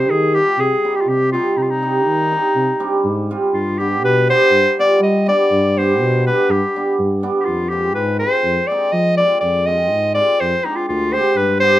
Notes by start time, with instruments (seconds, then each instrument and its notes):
Already playing: tuba C3, hammered dulcimer G3, clarinet C5
0.10 tuba D#3, clarinet G#4
0.34 hammered dulcimer G3 C4 F4, clarinet G4
0.58 tuba C3, clarinet G#4
0.84 hammered dulcimer G3 C4 D#4
0.95 clarinet G4
1.01 clarinet F4
1.07 tuba C3, clarinet G4
1.32 hammered dulcimer G3 C4 D#4, clarinet F4
1.57 tuba C3, clarinet D#4
1.62 clarinet F4
1.70 clarinet D#4
1.83 hammered dulcimer G3 C4 D#4
2.06 tuba D#3
2.32 hammered dulcimer G3 C4 D#4
2.55 tuba C3
2.80 hammered dulcimer G3 C4 D4
3.04 tuba G#2
3.31 hammered dulcimer G3 C4 F4
3.53 tuba G2, clarinet F4
3.79 hammered dulcimer G3 B3 D4, clarinet G4
4.02 tuba B2, clarinet B4
4.29 hammered dulcimer G3 B3 D4, clarinet C5
4.51 tuba G2
4.79 hammered dulcimer G3 B3 F4, clarinet D5
5.00 tuba G3, clarinet D#5
5.27 hammered dulcimer G3 B3 D4, clarinet D5
5.51 tuba G2
5.77 hammered dulcimer G3 B3 D4, clarinet C5
6.00 tuba B2
6.26 hammered dulcimer G3 B3 D4, clarinet B4
6.49 tuba G2, clarinet G4
6.76 hammered dulcimer G3 B3 D4
6.99 tuba G2
7.23 hammered dulcimer G3 B3 D4
7.40 clarinet G4
7.45 tuba F2, clarinet F4
7.69 hammered dulcimer G#3 C4 F4, clarinet G4
7.95 tuba G#2, clarinet B4
8.19 hammered dulcimer G#3 C4 F4, clarinet C5
8.44 tuba F2
8.67 hammered dulcimer G#3 C4, clarinet D5
8.72 hammered dulcimer D#4
8.92 tuba F3, clarinet D#5
9.17 hammered dulcimer G#3 C4 F4, clarinet D5
9.40 tuba F2, clarinet D5
9.66 hammered dulcimer G#3 C4 F4, clarinet D#5
9.91 tuba G#2
10.14 hammered dulcimer G#3 C4 F4, clarinet D5
10.40 tuba F2, clarinet C5
10.65 hammered dulcimer G#3 C4 D4, clarinet D#4
10.76 clarinet F4
10.88 tuba D2, clarinet F4
11.13 hammered dulcimer G#3 C4 G4, clarinet C5
11.36 tuba G2, clarinet B4
11.60 hammered dulcimer B3 D4 G4, clarinet C5